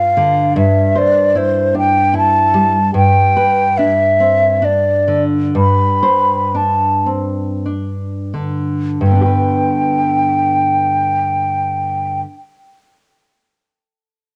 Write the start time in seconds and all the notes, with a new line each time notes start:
Already playing: G2 F4 F5
0.17 D3
0.56 G2 E5
0.95 C5 D5
1.35 E4 C5
1.75 D4 G5
2.14 E4 A5
2.54 G3
2.94 G2 G5
3.37 B4
3.77 D4 E5
4.20 C4
4.62 D4 D5
5.08 D3
5.55 G2 B5
6.03 C5
6.55 D4 A5
7.06 C4
7.66 D4
8.34 D3
9.01 G2 G5
9.06 D3
9.11 B3
9.15 D4
9.21 G4
9.26 B4